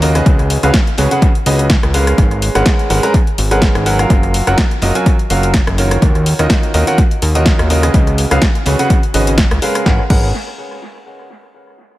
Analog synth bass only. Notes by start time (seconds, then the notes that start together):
Already playing: D#2
0.26 C#2
0.63 C#2
0.98 C#2
1.46 C#2
1.83 C#2
2.18 G#1
2.55 G#1
2.90 G#1
3.38 G#1
3.75 G#1
4.10 F#1
4.47 F#1
4.82 F#1
5.30 F#1
5.67 F#1
6.02 D#2
6.39 D#2
6.74 D#2
7.22 D#2
7.59 D#2
7.94 C#2
8.31 C#2
8.66 C#2
9.14 G#1
9.51 C#2
9.86 G#1
10.10 G#1